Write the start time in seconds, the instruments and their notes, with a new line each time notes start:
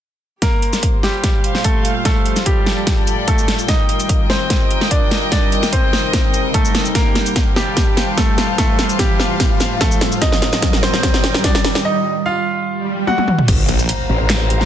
0.42 ambient pad A#2 G3 F4, grand piano A#3 A#4, string section G4, kick, snare, closed hi-hat, riser
0.48 string section C5
0.62 closed hi-hat
0.73 snare, closed hi-hat, shaker
0.83 kick, closed hi-hat
1.03 grand piano G3 G4, snare
1.16 string section F5
1.24 kick, snare, closed hi-hat
1.44 closed hi-hat
1.55 snare
1.64 grand piano A3 A4, kick, closed hi-hat
1.85 closed hi-hat
2.05 ambient pad A2, string section F3, grand piano A3 A4, kick, snare, closed hi-hat
2.15 string section A4
2.26 closed hi-hat
2.36 snare, closed hi-hat, shaker
2.46 grand piano G3 G4, string section G5, kick, closed hi-hat
2.66 snare
2.75 string section D5
2.87 kick, snare, closed hi-hat
3.07 closed hi-hat, shaker
3.28 grand piano A3 A4, kick, closed hi-hat
3.38 shaker
3.48 snare, closed hi-hat
3.59 shaker
3.68 ambient pad D#3, grand piano D#4 D#5, string section A#4, kick, snare, closed hi-hat
3.89 closed hi-hat
3.96 string section D#5, closed hi-hat, shaker
4.09 kick, closed hi-hat
4.30 grand piano C4 C5, snare
4.50 kick, snare, closed hi-hat
4.71 closed hi-hat
4.81 snare
4.91 grand piano D4 D5, kick, closed hi-hat
5.11 snare, closed hi-hat
5.32 ambient pad C3 D#4, string section C4, grand piano D4 D5, kick, snare, closed hi-hat
5.52 closed hi-hat
5.63 snare, closed hi-hat, shaker
5.73 grand piano C4 C5, kick, closed hi-hat
5.93 snare
6.13 kick, snare, closed hi-hat
6.34 closed hi-hat, shaker
6.54 grand piano A3 A4, kick, closed hi-hat
6.65 shaker
6.75 snare, closed hi-hat
6.85 shaker
6.95 ambient pad A#2 F4, grand piano A#3 A#4, string section G4, kick, snare, closed hi-hat
7.15 snare, closed hi-hat
7.26 closed hi-hat, shaker
7.34 string section C5 F5, kick, snare, closed hi-hat
7.56 grand piano G3 G4, snare
7.64 string section A5
7.77 kick, snare, closed hi-hat
7.97 snare, closed hi-hat
8.17 grand piano A3 A4, kick, snare, closed hi-hat
8.38 snare, closed hi-hat
8.58 ambient pad A2, grand piano A3 A4, kick, snare, closed hi-hat
8.79 snare, closed hi-hat
8.89 closed hi-hat, shaker
8.99 grand piano G3 G4, kick, snare, closed hi-hat
9.20 snare
9.40 kick, snare, closed hi-hat
9.60 snare, closed hi-hat, shaker
9.81 grand piano A3 A4, kick, snare, closed hi-hat
9.92 shaker
10.01 snare, closed hi-hat
10.12 shaker
10.21 ambient pad D#3 G3, grand piano D#4 D#5, string section A#4, kick, snare, closed hi-hat
10.32 string section D#5, snare
10.42 snare, closed hi-hat
10.53 snare, closed hi-hat, shaker
10.62 kick, snare, closed hi-hat
10.73 string section G5, snare
10.83 grand piano C4 C5, snare
10.94 snare
11.03 kick, snare, closed hi-hat
11.14 snare
11.24 snare, closed hi-hat
11.34 snare
11.44 grand piano D4 D5, kick, snare, closed hi-hat
11.55 snare
11.64 snare, closed hi-hat
11.75 snare
11.85 grand piano D#4 D#5
12.26 grand piano F4 F5
12.67 swell
13.07 grand piano F#4 F#5, high tom
13.18 high tom
13.28 mid tom
13.38 mid tom
13.48 wobble bass G1, ambient pad D3 A#3 G4, string section C5, kick, closed hi-hat, crash, impact
13.69 detuned saw bass A#1, string section A#5, closed hi-hat
13.79 closed hi-hat, shaker
13.89 string section F5, closed hi-hat
14.09 wobble bass A1
14.30 snare, clap, closed hi-hat
14.50 closed hi-hat
14.61 snare